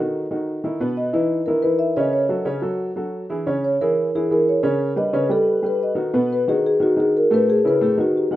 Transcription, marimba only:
Already playing: A4
0.97 D#5
1.14 B4
1.46 A#4
1.62 B4
1.79 E5
1.96 D#5
2.13 C#5
3.64 C#5
3.81 A#4
4.16 G#4
4.32 A#4
4.49 C#5
4.97 D#5
5.14 B4
5.32 A4
5.66 B4
5.83 D#5
6.33 B4
6.49 G#4
6.67 G#4
6.83 F#4
7.00 G#4
7.17 A#4
7.34 B4
7.50 G#4
7.67 B4
7.83 G#4
8.01 F#4
8.17 G4

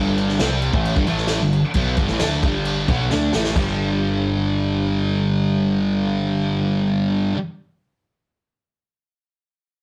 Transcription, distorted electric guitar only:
Already playing: G2 D3 G3
0.40 C3 G3 C4
0.74 A2 E3 A3
0.96 G2 D3
1.07 A2 E3 A3
1.41 G2 D3
1.75 B2 F#3 B3
1.97 G2 D3
2.08 A2 E3
2.21 D3 A3 D4
2.44 G2 D3 G3
2.89 B2 F#3 B3
3.12 D3 A3 D4
3.33 A2 E3 A3
3.54 G2 D3
3.58 G3

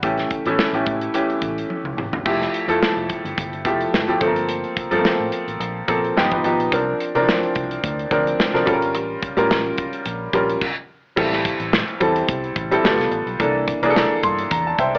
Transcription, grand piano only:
0.03 E3 A3 C#4 G4
0.46 E3 A3 C#4 E4
0.74 E3 A3 C#4 G4
1.14 E3 A3 C#4 G4
2.25 F3 A3 E4 G4
2.68 F3 A3 E4 A4
3.65 F3 A3 E4 G4
4.08 F3 A3 E4 G4
4.21 F3 A3 C4 A4
4.27 A#3
4.91 F3 A3 C4 A4
4.98 A#3
5.88 F3 A#3 C4 A4
6.17 F3 B3 D#4 G4
6.32 F3 B3 D#4 G4
6.44 F3 B3 D#4 G4
6.72 F3 C4 D4 A#4
7.15 E3 C4 D4 A#4
7.21 F3
8.11 F3 C4 D4 A#4
8.54 F3 C4 D4 A#4
8.65 G3 C#4 F4 A4
8.73 A#4
9.37 G3 C#4 F4 A#4
10.34 G3 C#4 F4 A#4
11.16 G3 C4 E4 A4
12.00 G3 C4 E4 A4
12.71 G3 C4 E4 A4
12.84 G3 B3 F4 A4
13.39 E3 A#3 D4 A4
13.83 E3 A#3 D4 G#4
13.90 A4
14.23 C6
14.51 A#5
14.67 A5
14.79 C5 E5 G5
14.95 A#4 D5

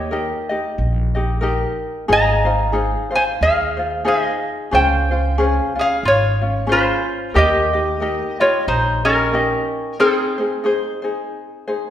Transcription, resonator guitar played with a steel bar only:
Already playing: G4 C#5
2.12 D#5 A#5
3.15 C5 G#5
3.42 G#4 F5
4.08 G#4 D#5
4.74 C5 G5
5.79 G#4 F5
6.05 F4 C#5
6.72 F4 C5
7.36 G4 D#5
8.41 F4 C#5
8.68 D#4 C5
9.05 C#4 A#4
10.00 C4 G#4

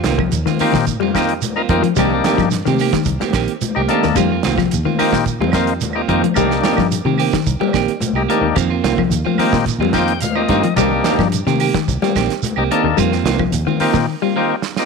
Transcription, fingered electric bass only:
0.05 C2
0.32 D#2
0.60 muted fingered electric bass stroke
0.73 A#2
1.01 F2
1.42 D#2
1.69 F2
1.96 C2
2.38 G2
2.67 C3
3.06 C2
3.33 A#1
3.63 muted fingered electric bass stroke
3.77 C2
4.05 D#2
4.15 F2
4.45 C2
4.73 D#2
5.01 muted fingered electric bass stroke
5.12 A#2
5.40 F2
5.83 D#2
6.08 F2
6.36 C2
6.78 G2
7.05 C3
7.47 C2
7.60 muted fingered electric bass stroke
7.74 A#1
8.00 muted fingered electric bass stroke
8.13 C2
8.41 D#2
8.56 F2
8.84 C2
9.10 D#2
9.38 muted fingered electric bass stroke
9.53 A#2
9.78 F2
10.21 D#2
10.49 G2
10.76 C2
11.19 G2
11.47 C3
11.88 C2
12.15 A#1
12.44 muted fingered electric bass stroke
12.57 C2
12.84 D#2
12.98 F2
13.24 C2
13.52 D#2
13.80 muted fingered electric bass stroke
13.94 A#2

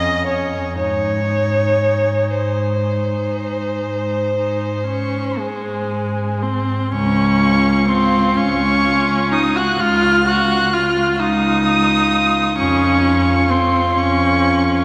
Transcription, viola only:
Already playing: C#4
0.77 D#4
1.28 D#4
2.82 D#4
4.37 D#4
4.87 C#4
5.38 G#3
6.42 C4
6.93 C#4
7.88 C4
8.37 C#4
9.32 D#4
9.56 F#4
9.80 F4
10.28 F#4
10.73 F4
11.20 D#4
12.59 C#4
13.50 C4
13.97 C#4

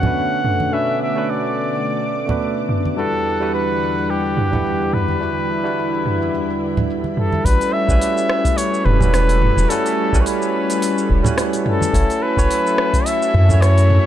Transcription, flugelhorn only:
Already playing: F#5
0.73 E5
1.02 E5
1.30 D5
2.98 A4
3.54 B4
4.10 G4
4.93 B4
7.18 A4
7.45 B4
7.73 E5
8.57 C#5
8.85 B4
9.69 A4
10.21 C#5
10.26 B4
11.67 A4
12.22 B4
13.06 E5
13.61 C#5

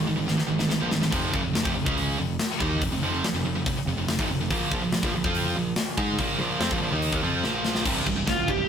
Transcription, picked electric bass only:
0.07 G#1
0.18 G#1
0.29 G#1
0.39 muted picked electric bass stroke
0.49 G#1
0.59 G#1
0.69 G#1
0.81 A#1
0.90 G#1
1.01 G#1
1.13 F1
1.34 F#1
1.44 F1
1.55 F1
1.65 F1
1.75 F1
1.86 C#2
2.17 F1
2.61 D#2
2.82 F1
2.91 F1
3.01 F1
3.33 F1
3.44 F1
3.54 F1
3.66 F1
3.75 muted picked electric bass stroke
3.85 F1
3.96 F1
4.07 F1
4.19 G#1
4.27 F1
4.38 F1
4.50 A#1
4.72 A#1
4.81 A#1
4.92 A#1
5.03 A#1
5.14 A#1
5.24 F2
5.56 A#1
5.98 G#2
6.19 A#1
6.39 A#1
6.60 F2
6.71 A#1
6.80 A#1
6.91 D#2
7.13 D#2
7.23 F2
7.44 A#1
7.86 C1
8.07 C1
8.28 C1
8.48 C1

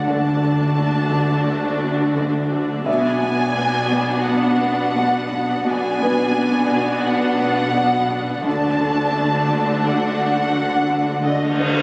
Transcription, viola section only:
0.08 A3 D4
2.87 B3 D4
5.66 B3 D4
8.45 A3 D4
11.24 D3 A3

